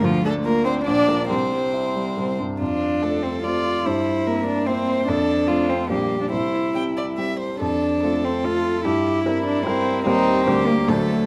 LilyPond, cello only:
\new Staff \with { instrumentName = "Cello" } { \time 3/4 \key f \major \tempo 4 = 144 f8 a8 bes8 c'8 d'4 | c'2~ c'8 r8 | d'4. c'8 f'4 | e'4. d'8 c'4 |
d'4. c'8 bes8. d'16 | e'2 r4 | d'4. c'8 f'4 | e'4. d'8 c'4 |
\key g \minor c'4. bes8 a4 | }